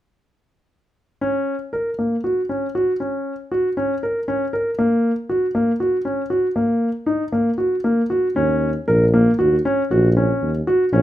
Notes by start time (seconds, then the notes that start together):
1.21 C#4
1.73 A#4
1.99 A#3
2.24 F#4
2.49 C#4
2.75 F#4
3.00 C#4
3.52 F#4
3.77 C#4
4.03 A#4
4.28 C#4
4.53 A#4
4.79 A#3
5.29 F#4
5.55 A#3
5.80 F#4
6.05 C#4
6.30 F#4
6.56 A#3
7.06 D#4
7.32 A#3
7.58 F#4
7.84 A#3
8.10 F#4
8.36 D#2 C#4
8.88 A#1 A#4
9.14 A#3
9.39 D#2 F#4
9.65 C#4
9.90 A#1 F#4
10.17 C#4
10.42 D#2
10.67 F#4
10.92 A#1 C#4